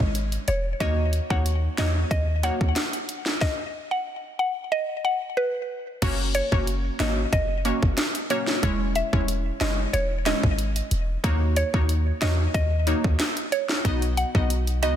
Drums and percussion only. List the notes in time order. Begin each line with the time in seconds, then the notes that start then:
0.00 kick
0.15 closed hi-hat
0.32 closed hi-hat
0.48 closed hi-hat
0.80 kick, closed hi-hat
1.13 closed hi-hat
1.30 kick
1.46 closed hi-hat
1.78 snare, closed hi-hat
2.11 kick, closed hi-hat
2.43 closed hi-hat
2.61 kick
2.76 snare, closed hi-hat
2.93 closed hi-hat
3.09 closed hi-hat
3.26 snare
3.41 kick, snare
6.02 kick, closed hi-hat, crash
6.35 closed hi-hat
6.52 kick
6.67 closed hi-hat
7.00 snare, closed hi-hat
7.33 kick, closed hi-hat
7.65 closed hi-hat
7.83 kick
7.97 snare, closed hi-hat
8.15 closed hi-hat
8.30 closed hi-hat
8.47 snare
8.63 kick, closed hi-hat
8.95 closed hi-hat
9.13 kick
9.28 closed hi-hat
9.61 snare, closed hi-hat
9.94 closed hi-hat
10.26 snare, closed hi-hat
10.43 kick
10.59 closed hi-hat
10.76 closed hi-hat
10.91 closed hi-hat
11.24 kick, closed hi-hat
11.56 closed hi-hat
11.74 kick
11.89 closed hi-hat
12.22 snare, closed hi-hat
12.54 kick, closed hi-hat
12.87 closed hi-hat
13.04 kick
13.19 snare, closed hi-hat
13.37 closed hi-hat
13.52 closed hi-hat
13.69 snare
13.85 kick, closed hi-hat
14.02 closed hi-hat
14.17 closed hi-hat
14.35 kick
14.50 closed hi-hat
14.67 closed hi-hat
14.83 closed hi-hat